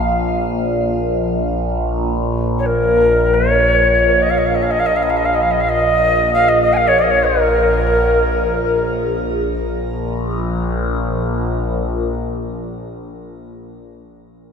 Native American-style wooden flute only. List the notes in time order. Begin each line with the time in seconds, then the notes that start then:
Already playing: F5
2.58 C#5
2.65 A#4
3.34 C#5
4.22 D#5
4.30 F5
4.37 D#5
4.46 F5
4.54 D#5
4.62 F5
4.70 D#5
4.79 F5
4.85 D#5
4.96 F5
5.02 D#5
5.09 F5
5.16 D#5
5.25 F5
5.34 D#5
5.41 F5
5.51 D#5
5.60 F5
5.69 D#5
6.33 F5
6.48 D#5
6.61 D#5
6.72 F5 G#5
6.87 C#5
6.98 D#5
7.10 C#5
7.25 A#4